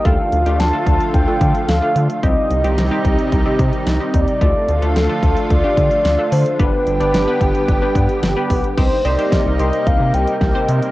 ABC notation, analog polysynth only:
X:1
M:4/4
L:1/16
Q:1/4=110
K:Cdor
V:1 name="Analog polysynth"
[A,DFA]2 z [A,DFG]2 [A,DFA]3 z [A,DFA]3 z [A,DFA]2 z | [G,CEG]2 z [G,CEG]2 [G,CEG]3 z [G,CEG]3 z [G,CEG]2 z | [A,DFA]2 z [A,DFA]2 [A,DFA]3 z [A,DFG]3 z [A,DFA]2 z | [=B,DG=B]2 z [B,DGd]2 [B,DGB]3 z [B,DGB]3 z [B,DGB]2 z |
[CEGc]2 [CEGc] [CEGc]2 z [CEGc]4- [CEGc] z2 [CEGc]2 z |]